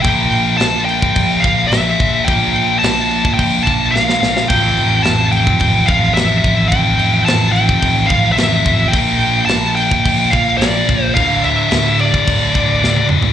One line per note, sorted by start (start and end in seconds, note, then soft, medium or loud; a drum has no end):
0.02 0.26 A#1 loud
0.02 1.43 A#2 loud
0.02 0.57 G5 loud
0.02 kick loud
0.02 crash medium
0.08 1.45 F3 loud
0.08 1.43 A#3 loud
0.32 0.54 A#1 medium
0.32 crash medium
0.57 1.03 A#1 loud
0.57 0.85 A5 medium
0.57 snare loud
0.57 crash medium
0.85 1.44 G5 loud
0.85 crash medium
1.02 kick medium
1.15 1.37 A#1 medium
1.15 kick loud
1.15 crash medium
1.40 1.70 A#3 medium
1.40 1.67 F5 medium
1.44 1.65 A#1 medium
1.44 1.68 A#2 medium
1.44 1.71 F3 medium
1.44 kick medium
1.44 crash medium
1.68 2.25 A#2 medium
1.68 2.27 E5 loud
1.72 1.93 A#1 loud
1.72 2.28 F3 loud
1.72 2.27 A#3 loud
1.72 snare loud
1.72 crash medium
2.00 2.21 A#1 loud
2.00 kick medium
2.00 crash medium
2.24 2.49 A#1 medium
2.24 3.64 A#2 loud
2.24 2.78 G5 loud
2.24 kick loud
2.24 crash medium
2.28 3.67 F3 medium
2.28 3.64 A#3 loud
2.56 2.77 A#1 medium
2.56 crash medium
2.79 3.33 A5 medium
2.83 3.26 A#1 loud
2.83 snare loud
2.83 crash medium
3.11 crash medium
3.25 kick medium
3.34 3.63 G5 loud
3.39 3.60 A#1 medium
3.39 kick loud
3.39 crash loud
3.63 3.95 F3 medium
3.63 3.92 A#3 medium
3.63 3.94 A5 medium
3.63 kick medium
3.68 3.88 A#1 medium
3.68 3.92 A#2 medium
3.68 crash medium
3.91 4.15 A#1 medium
3.91 4.48 A#2 medium
3.91 4.50 F3 medium
3.91 4.50 F5 loud
3.96 4.50 A#3 loud
3.96 snare medium
4.09 snare medium
4.23 4.43 A#1 medium
4.23 snare medium
4.37 snare loud
4.48 4.71 A1 medium
4.48 5.86 F2 loud
4.48 5.87 C3 medium
4.48 5.88 F3 loud
4.48 5.01 G5 loud
4.48 kick loud
4.48 crash medium
4.77 4.99 A1 medium
4.77 crash medium
5.03 5.48 A1 loud
5.03 5.31 A5 medium
5.03 snare medium
5.03 crash medium
5.32 5.90 G5 loud
5.32 crash medium
5.47 kick medium
5.60 5.82 A1 medium
5.60 kick loud
5.60 crash medium
5.86 6.09 A1 medium
5.86 6.15 C3 medium
5.86 6.20 F3 medium
5.86 6.14 F5 medium
5.86 kick medium
5.86 crash medium
5.92 6.16 F2 medium
6.14 6.38 A1 medium
6.14 6.71 F2 medium
6.14 6.67 E5 medium
6.14 snare loud
6.14 crash medium
6.19 6.71 C3 medium
6.19 6.75 F3 medium
6.44 6.65 A1 loud
6.44 kick medium
6.44 crash medium
6.68 6.93 A1 loud
6.68 8.09 F2 loud
6.68 7.21 G5 loud
6.68 kick loud
6.68 crash medium
6.74 8.10 C3 loud
6.74 8.09 F3 loud
6.99 7.20 A1 medium
6.99 crash medium
7.25 7.69 A1 loud
7.25 7.52 A5 medium
7.25 snare loud
7.25 crash medium
7.52 8.11 G5 loud
7.52 crash medium
7.69 kick medium
7.82 8.03 A1 medium
7.82 kick medium
7.82 crash medium
8.06 8.41 F3 medium
8.06 8.32 F5 medium
8.06 kick medium
8.06 crash medium
8.11 8.31 A1 medium
8.11 8.37 F2 medium
8.11 8.37 C3 medium
8.32 8.58 A1 medium
8.32 8.92 E5 loud
8.37 8.91 F2 medium
8.37 8.93 C3 medium
8.37 8.94 F3 loud
8.37 snare loud
8.37 crash medium
8.66 8.87 A1 medium
8.66 kick medium
8.66 crash medium
8.88 10.30 A#2 loud
8.88 9.45 G5 loud
8.93 9.14 A#1 medium
8.93 10.33 F3 loud
8.93 10.30 A#3 loud
8.93 kick loud
8.93 crash loud
9.19 9.41 A#1 medium
9.19 crash medium
9.46 9.90 A#1 loud
9.46 9.75 A5 medium
9.46 crash medium
9.50 snare loud
9.75 10.33 G5 loud
9.75 crash medium
9.91 kick medium
10.05 10.26 A#1 medium
10.05 kick loud
10.05 crash loud
10.30 10.54 A#1 medium
10.30 10.61 F3 medium
10.30 10.58 A#3 medium
10.30 10.57 F5 medium
10.30 kick medium
10.30 crash medium
10.35 10.59 A#2 medium
10.58 10.81 A#1 medium
10.58 11.14 A#2 medium
10.58 11.04 D5 loud
10.58 crash medium
10.62 11.17 F3 medium
10.62 11.15 A#3 loud
10.62 snare loud
10.88 11.09 A#1 medium
10.88 kick medium
10.88 crash medium
11.04 11.14 C5 loud
11.15 11.37 D1 loud
11.15 12.53 D2 loud
11.15 12.54 A2 loud
11.15 11.44 F5 loud
11.15 kick loud
11.15 crash medium
11.19 12.53 D3 loud
11.44 11.66 D1 medium
11.44 12.00 E5 medium
11.44 crash medium
11.71 12.14 D1 loud
11.71 snare loud
11.71 crash medium
11.99 13.07 D5 medium
11.99 crash medium
12.14 kick medium
12.27 12.49 D1 medium
12.27 kick loud
12.27 crash medium
12.54 12.76 D1 medium
12.54 12.80 D2 medium
12.54 12.82 A2 medium
12.54 12.81 D3 medium
12.54 kick medium
12.54 crash medium
12.81 13.04 D1 medium
12.81 13.33 D2 medium
12.81 13.33 A2 medium
12.81 snare medium
12.85 13.33 D3 medium
12.96 high tom medium
13.09 13.32 D1 medium
13.09 mid tom medium
13.22 floor tom medium